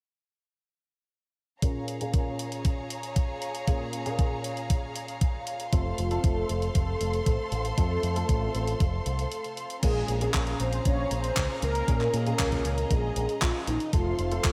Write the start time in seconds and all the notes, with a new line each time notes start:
1.62 A#2 A#3 C#4 F4 G#4 C#5 F5 A#5, kick, closed hi-hat
1.88 closed hi-hat
2.01 A#2 A#3 C#4 F4 G#4, closed hi-hat
2.14 kick, closed hi-hat
2.39 closed hi-hat
2.52 closed hi-hat
2.65 kick, closed hi-hat
2.90 closed hi-hat
3.03 closed hi-hat
3.16 kick, closed hi-hat
3.42 closed hi-hat
3.55 closed hi-hat
3.67 A#2 A#3 C#4 F4 G#4, kick, closed hi-hat
3.93 closed hi-hat
4.06 A#2 A#3 C#4 F4 G#4, closed hi-hat
4.19 kick, closed hi-hat
4.44 closed hi-hat
4.57 closed hi-hat
4.70 kick, closed hi-hat
4.96 closed hi-hat
5.08 closed hi-hat
5.21 kick, closed hi-hat
5.47 closed hi-hat
5.60 closed hi-hat
5.73 F1 A3 C4 F4 A4 C5 C6, kick, closed hi-hat
5.98 F1 F4, closed hi-hat
6.11 A3 C4 F4 A4, closed hi-hat
6.24 F1 A4, kick, closed hi-hat
6.49 F1, closed hi-hat
6.62 closed hi-hat
6.75 F1 A4, kick, closed hi-hat
7.01 F1, closed hi-hat
7.14 closed hi-hat
7.26 A1, kick, closed hi-hat
7.52 A1, closed hi-hat
7.65 closed hi-hat
7.78 F2 A3 C4 F4 A4, kick, closed hi-hat
8.03 F2, closed hi-hat
8.16 A3 C4 F4 A4, closed hi-hat
8.29 A1, kick, closed hi-hat
8.55 A1, closed hi-hat
8.67 closed hi-hat
8.80 F1, kick, closed hi-hat
9.06 C2, closed hi-hat
9.19 closed hi-hat
9.32 closed hi-hat
9.44 closed hi-hat
9.57 closed hi-hat
9.70 closed hi-hat
9.83 A#1 A#2 A#3 C#4 F4 G#4 F5 A#5, kick, closed hi-hat, crash
10.08 A#1, closed hi-hat
10.21 A#2 A#3 C#4 F4 G#4, closed hi-hat
10.34 A#1, kick, clap, closed hi-hat
10.47 closed hi-hat
10.60 A#1 C5, closed hi-hat
10.73 closed hi-hat
10.85 A#1 C#5, kick, closed hi-hat
11.11 A#1 C5, closed hi-hat
11.24 closed hi-hat
11.37 C#2, kick, clap, closed hi-hat
11.62 C#2 A#4, closed hi-hat
11.75 closed hi-hat
11.88 A#2 A#3 C#4 F4 G#4 D#5, kick, closed hi-hat
12.01 clap
12.14 A#2, closed hi-hat
12.26 A#2 A#3 C#4 F4 G#4, closed hi-hat
12.39 C#2 A#4, kick, clap, closed hi-hat
12.52 kick, closed hi-hat
12.65 C#2, closed hi-hat
12.78 closed hi-hat
12.91 A#1 G#4, kick, closed hi-hat
13.16 A#1, closed hi-hat
13.29 closed hi-hat
13.42 A#1 F4, kick, clap, closed hi-hat
13.67 A#1 D#4, closed hi-hat
13.80 closed hi-hat
13.93 F1 A3 C4 F4 A4 C5 F5 C6, kick, closed hi-hat
14.19 F1, closed hi-hat
14.32 A3 C4 F4 A4, closed hi-hat
14.44 F1, kick, clap, closed hi-hat